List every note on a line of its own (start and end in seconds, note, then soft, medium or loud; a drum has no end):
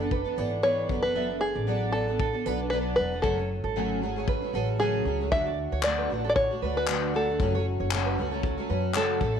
0.00 0.22 F#1 medium
0.00 0.25 B3 soft
0.00 0.25 D4 medium
0.00 0.23 A4 medium
0.11 0.38 B4 medium
0.11 kick medium
0.24 0.36 B3 soft
0.24 0.37 D4 soft
0.24 0.37 A4 medium
0.36 0.89 G#1 medium
0.36 0.61 E3 medium
0.36 0.62 B3 medium
0.36 0.62 D4 medium
0.36 0.63 A4 medium
0.36 0.51 C#5 medium
0.63 0.88 E3 medium
0.63 0.88 B3 medium
0.63 0.89 D4 medium
0.63 0.89 A4 medium
0.63 1.02 B4 medium
0.63 1.02 C#5 loud
0.89 1.52 F#1 medium
0.89 1.03 F#3 soft
0.89 1.04 B3 medium
0.89 1.03 D4 medium
0.89 1.02 A4 medium
0.89 kick medium
1.03 1.14 B3 soft
1.03 1.14 D4 soft
1.03 1.15 A4 soft
1.03 1.38 B4 medium
1.15 1.29 F#3 medium
1.15 1.30 B3 medium
1.15 1.29 D4 medium
1.15 1.27 A4 medium
1.15 1.40 E5 medium
1.29 1.66 B3 soft
1.29 1.67 D4 soft
1.29 1.67 A4 soft
1.41 1.92 G#4 medium
1.55 2.30 A1 medium
1.55 1.91 D5 medium
1.67 1.92 F#3 medium
1.67 1.92 B3 medium
1.67 1.93 D4 medium
1.67 1.94 A4 medium
1.92 2.08 F#3 soft
1.92 2.08 B3 medium
1.92 2.08 D4 medium
1.92 2.70 A4 medium
1.92 2.06 A4 medium
2.07 2.34 B3 soft
2.07 2.33 D4 soft
2.07 2.32 A4 soft
2.19 2.46 A4 medium
2.19 kick medium
2.33 2.45 B3 soft
2.33 2.46 D4 soft
2.33 2.45 A4 soft
2.46 2.94 B1 medium
2.46 2.71 F#3 medium
2.46 2.71 B3 medium
2.46 2.71 D4 medium
2.46 2.72 A4 medium
2.46 2.59 B4 medium
2.70 2.96 F#3 medium
2.70 2.97 B3 medium
2.70 2.98 D4 medium
2.70 2.98 A4 medium
2.70 2.77 B4 medium
2.96 3.23 E1 medium
2.96 3.12 F#3 medium
2.96 3.12 B3 medium
2.96 3.12 D4 medium
2.96 3.11 A4 medium
2.96 3.21 B4 medium
3.12 3.24 B3 soft
3.12 3.24 D4 soft
3.12 3.24 A4 soft
3.22 3.61 F#1 medium
3.22 3.38 F#2 medium
3.22 3.38 C#3 medium
3.22 3.38 F#3 medium
3.22 3.38 A3 medium
3.22 3.37 C#4 medium
3.22 3.38 G#4 medium
3.22 4.75 A4 medium
3.22 3.48 C#5 medium
3.22 kick loud
3.39 3.75 F#3 soft
3.39 3.76 A3 soft
3.39 3.76 C#4 soft
3.64 4.38 G#1 medium
3.64 3.99 A4 medium
3.76 4.02 F#2 medium
3.76 4.02 C#3 medium
3.76 4.00 F#3 medium
3.76 4.01 A3 medium
3.76 4.02 C#4 medium
3.76 4.02 G#4 medium
4.02 4.16 F#3 medium
4.02 4.16 A3 medium
4.02 4.16 C#4 medium
4.02 4.15 G#4 medium
4.16 4.43 F#3 soft
4.16 4.42 A3 medium
4.16 4.41 C#4 medium
4.16 4.40 G#4 medium
4.28 4.55 B4 medium
4.28 kick loud
4.42 4.52 F#3 soft
4.42 4.52 A3 soft
4.42 4.53 C#4 soft
4.42 4.54 G#4 soft
4.53 5.02 A1 medium
4.53 4.78 F#3 medium
4.53 4.79 A3 medium
4.53 4.79 C#4 medium
4.53 4.79 G#4 medium
4.53 4.68 A4 medium
4.79 5.05 F#2 medium
4.79 5.06 C#3 medium
4.79 5.04 F#3 medium
4.79 5.05 A3 medium
4.79 5.05 C#4 medium
4.79 5.31 G#4 medium
4.79 5.06 G#4 medium
4.79 5.18 G#4 medium
5.05 5.29 C#2 medium
5.05 5.20 F#3 medium
5.05 5.20 A3 medium
5.05 5.20 C#4 medium
5.05 5.19 G#4 medium
5.20 5.31 F#3 soft
5.20 5.31 A3 soft
5.20 5.32 C#4 soft
5.20 5.32 G#4 soft
5.31 5.69 D2 medium
5.31 5.46 D3 medium
5.31 5.46 F#3 medium
5.31 5.46 A3 medium
5.31 5.45 D4 medium
5.31 5.44 F#4 medium
5.31 5.84 E5 loud
5.31 kick loud
5.46 5.83 A3 soft
5.46 5.83 D4 soft
5.46 5.83 F#4 soft
5.46 5.57 D5 medium
5.72 6.07 D2 medium
5.72 5.83 C#5 medium
5.83 6.09 D3 medium
5.83 6.09 F#3 medium
5.83 6.09 A3 medium
5.83 6.10 D4 medium
5.83 6.10 F#4 medium
5.83 6.28 D5 medium
5.83 clap loud
5.98 6.09 B4 medium
6.10 6.47 A1 medium
6.10 6.24 F#3 medium
6.10 6.24 A3 medium
6.10 6.24 D4 medium
6.10 6.23 F#4 medium
6.24 6.51 A3 soft
6.24 6.51 D4 soft
6.24 6.49 F#4 medium
6.24 6.35 A4 medium
6.29 6.35 D5 medium
6.36 6.77 C#5 medium
6.36 kick loud
6.51 6.61 A3 soft
6.51 6.62 D4 soft
6.51 6.62 F#4 soft
6.62 7.36 D2 medium
6.62 6.87 F#3 soft
6.62 6.87 A3 medium
6.62 6.88 D4 medium
6.62 6.88 F#4 medium
6.62 6.87 B4 medium
6.77 7.15 B4 medium
6.88 7.14 D3 medium
6.88 7.13 F#3 medium
6.88 7.13 A3 medium
6.88 7.14 D4 medium
6.88 7.14 F#4 medium
6.88 clap loud
7.14 7.28 F#3 medium
7.14 7.28 A3 medium
7.14 7.28 D4 medium
7.14 7.27 F#4 medium
7.14 7.63 A4 medium
7.28 7.39 A3 soft
7.28 7.40 D4 soft
7.28 7.40 F#4 soft
7.40 7.77 F#1 medium
7.40 7.54 F#2 medium
7.40 7.54 C#3 medium
7.40 7.54 F#3 medium
7.40 7.54 A3 medium
7.40 7.54 C#4 medium
7.40 7.53 F#4 medium
7.40 kick loud
7.54 7.91 F#3 soft
7.54 7.91 A3 soft
7.54 7.92 C#4 soft
7.54 7.92 F#4 soft
7.54 7.65 C#5 medium
7.80 8.14 F#1 medium
7.80 7.91 C#5 medium
7.91 8.17 F#2 medium
7.91 8.18 C#3 medium
7.91 8.16 F#3 medium
7.91 8.17 A3 medium
7.91 8.18 C#4 medium
7.91 8.18 F#4 medium
7.91 clap loud
8.06 8.17 B4 medium
8.18 8.55 C#2 medium
8.18 8.32 F#3 medium
8.18 8.32 A3 medium
8.18 8.31 C#4 medium
8.18 8.30 F#4 medium
8.31 8.58 F#3 soft
8.31 8.57 A3 medium
8.31 8.57 C#4 medium
8.31 8.56 F#4 medium
8.31 8.42 A4 medium
8.43 8.68 A4 medium
8.43 kick loud
8.57 8.67 F#3 soft
8.57 8.69 A3 soft
8.57 8.69 C#4 medium
8.57 8.69 F#4 soft
8.69 9.17 F#2 medium
8.69 8.94 F#3 medium
8.69 8.94 A3 medium
8.69 8.95 C#4 medium
8.69 8.95 F#4 medium
8.69 8.83 B4 medium
8.94 9.21 F#2 medium
8.94 9.21 C#3 medium
8.94 9.20 F#3 medium
8.94 9.19 A3 medium
8.94 9.20 C#4 medium
8.94 9.22 F#4 medium
8.94 9.38 A4 medium
8.94 9.09 C#5 medium
8.94 clap loud
9.21 9.40 A1 medium
9.21 9.35 A3 medium
9.21 9.35 C#4 medium
9.21 9.34 E4 medium
9.21 9.34 A4 medium
9.21 kick loud
9.35 9.40 A3 soft
9.35 9.40 C#4 soft
9.35 9.40 E4 soft
9.35 9.40 A4 medium